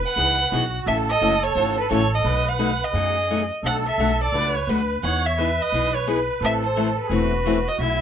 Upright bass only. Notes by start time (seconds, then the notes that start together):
0.16 C#2
0.52 B1
0.86 A1
1.21 F#1
1.55 G#1
1.91 A1
2.24 B1
2.93 F#2
3.63 B1
3.98 B1
4.32 C#2
4.67 D2
5.03 E2
5.72 B1
6.41 A1
7.10 E1
7.79 B1